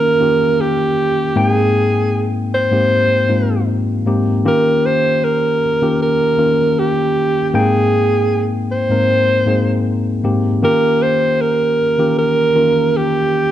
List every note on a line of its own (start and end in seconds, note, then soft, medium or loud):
0.00 0.20 D#3 medium
0.00 0.20 A#3 medium
0.00 0.21 C#4 medium
0.00 0.21 F4 medium
0.00 0.22 G4 medium
0.00 0.14 A#4 medium
0.00 0.63 A#4 loud
0.20 1.23 D#3 medium
0.20 1.23 A#3 medium
0.20 1.23 C#4 medium
0.20 1.23 F4 medium
0.20 1.23 G4 medium
0.61 1.41 G4 loud
1.36 2.54 G#2 medium
1.36 2.54 A#3 medium
1.36 2.55 C4 medium
1.36 2.55 D#4 medium
1.36 2.28 G#4 medium
1.36 2.55 G5 medium
2.54 3.65 C5 loud
2.71 3.22 G#2 medium
2.71 3.22 A#3 medium
2.71 3.22 C4 medium
2.71 3.22 D#4 medium
2.71 3.23 G4 medium
3.29 3.97 G#2 medium
3.29 3.97 A#3 medium
3.29 3.97 C4 medium
3.29 3.98 D#4 medium
3.29 3.98 F4 medium
4.06 4.40 G#2 medium
4.06 4.41 A#3 medium
4.06 4.41 C4 medium
4.06 4.41 D#4 medium
4.06 4.41 G4 medium
4.45 5.63 D#3 medium
4.45 5.63 A#3 medium
4.45 5.64 C#4 medium
4.45 5.64 F4 medium
4.45 5.64 G4 loud
4.45 4.88 A#4 loud
4.86 5.26 C5 loud
5.25 6.01 A#4 medium
5.82 6.31 D#3 medium
5.82 6.32 A#3 medium
5.82 6.32 C#4 medium
5.82 6.32 F4 medium
5.82 6.32 G4 medium
6.02 6.81 A#4 loud
6.38 7.40 D#3 medium
6.38 7.41 A#3 medium
6.38 7.41 C#4 medium
6.38 7.41 F4 medium
6.38 7.41 A#4 medium
6.79 7.50 G4 loud
7.50 8.72 G#2 medium
7.50 8.72 A#3 medium
7.50 7.58 G4 medium
7.54 8.72 C4 medium
7.54 8.72 D#4 medium
7.54 8.45 G#4 medium
7.54 8.73 G5 loud
8.72 9.83 C5 loud
8.90 9.40 G#2 medium
8.90 9.40 A#3 medium
8.90 9.40 C4 medium
8.90 9.40 D#4 medium
8.90 9.40 A#4 medium
9.46 10.15 G#2 medium
9.46 10.15 A#3 medium
9.46 10.15 C4 medium
9.46 10.15 D#4 medium
9.46 10.15 G#4 medium
10.24 10.58 G#2 medium
10.24 10.58 A#3 medium
10.24 10.58 C4 medium
10.24 10.58 D#4 medium
10.24 10.58 G4 medium
10.62 11.80 D#3 medium
10.62 11.80 A#3 medium
10.62 11.80 C#4 medium
10.62 11.81 F4 medium
10.62 11.81 G4 medium
10.62 11.04 A#4 loud
11.03 11.43 C5 loud
11.41 12.17 A#4 medium
11.98 12.48 D#3 medium
11.98 12.48 A#3 medium
11.98 12.48 C#4 medium
11.98 12.49 F4 medium
11.98 12.49 G4 medium
12.19 12.98 A#4 loud
12.55 13.52 D#3 medium
12.55 13.52 A#3 medium
12.55 13.52 C#4 medium
12.55 13.52 F4 medium
12.55 13.52 A#4 medium
12.97 13.52 G4 medium